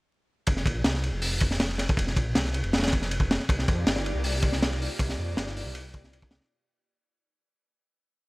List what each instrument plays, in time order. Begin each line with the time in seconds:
0.47 detuned saw bass F1, kick, ride
0.57 snare
0.66 detuned saw bass A#1, kick, ride
0.84 detuned saw bass C2, snare, ride
0.94 snare
1.04 ride
1.13 detuned saw bass F1
1.22 open hi-hat
1.40 kick, ride
1.51 snare
1.60 snare, ride
1.69 snare
1.78 snare, ride
1.89 kick
1.97 detuned saw bass F1, kick, ride
2.07 snare
2.16 detuned saw bass A#1, kick, ride
2.35 detuned saw bass C2, snare, ride
2.44 snare
2.54 ride
2.64 detuned saw bass F1, ride
2.73 snare, ride
2.78 snare, ride
2.83 snare, ride
2.88 snare, ride
2.93 kick, ride
3.02 snare
3.11 ride
3.20 kick
3.31 snare, ride
3.40 snare
3.49 detuned saw bass C2, analog synth pad A#3 D#4 F4 G4 D5, kick, ride
3.59 snare
3.68 detuned saw bass F2, kick, ride
3.86 detuned saw bass G1, snare, ride
3.96 snare
4.06 ride
4.15 detuned saw bass C2
4.24 open hi-hat
4.42 analog synth pad A#3 D#4 F4 G4 D5, kick, ride
4.52 snare
4.62 snare, ride
4.71 snare
4.82 open hi-hat
4.99 detuned saw bass C2, analog synth pad A#3 D#4 F4 G4 D5, kick, ride
5.09 snare
5.18 detuned saw bass F2
5.37 detuned saw bass G1, snare, ride
5.47 snare
5.57 open hi-hat
5.65 detuned saw bass C2
5.75 ride
5.94 analog synth pad A#3 D#4 F4 G4 D5, kick, ride
6.04 snare
6.13 ride
6.22 kick
6.31 snare, ride
6.41 snare